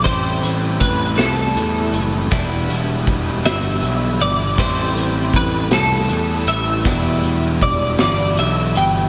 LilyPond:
<<
  \new Staff \with { instrumentName = "Clean electric guitar" } { \time 6/8 \key a \dorian \tempo 4. = 53 c''4 b'8 a'4 r8 | r4. e''4 d''8 | c''4 b'8 a'4 e''8~ | e''4 d''8 d''8 e''8 g''8 | }
  \new Staff \with { instrumentName = "Clean electric guitar" } { \clef bass \time 6/8 \key a \dorian <a, e g c' e'>2. | <e, b, e g d' e'>2. | <a, e g c' e'>2. | <e, b, e g d' e'>2. | }
  \new Staff \with { instrumentName = "Overdriven electric guitar" } { \clef bass \time 6/8 \key a \dorian <a, e a c' e'>4. <a, e a c' e'>4. | <e, b, e g b e'>4. <e, b, e g b e'>4. | <a, e a c' e'>4. <a, e a c' e'>4. | <e, b, e g b e'>4. <e, b, e g b e'>4. | }
  \new Staff \with { instrumentName = "Picked electric bass" } { \clef bass \time 6/8 \key a \dorian a,,8 a,,8 a,,8 c,8 e,8 fis,,8 | e,,8 e,,8 e,,8 g,,8 b,,8 g,,8 | a,,8 a,,8 a,,8 c,8 e,8 a,,8 | e,,8 e,,8 e,,8 g,,8 b,,8 g,,8 | }
  \new DrumStaff \with { instrumentName = "Drums" } \drummode { \time 6/8 <hh bd>8 hh8 <hh bd>8 <hh sn>8 hh8 hh8 | <hh bd>8 hh8 <hh bd>8 <hh sn>8 hh8 hh8 | <hh bd>8 hh8 <hh bd>8 <hh sn>8 hh8 hh8 | <hh bd>8 hh8 <hh bd>8 <hh sn>8 hh8 hh8 | }
>>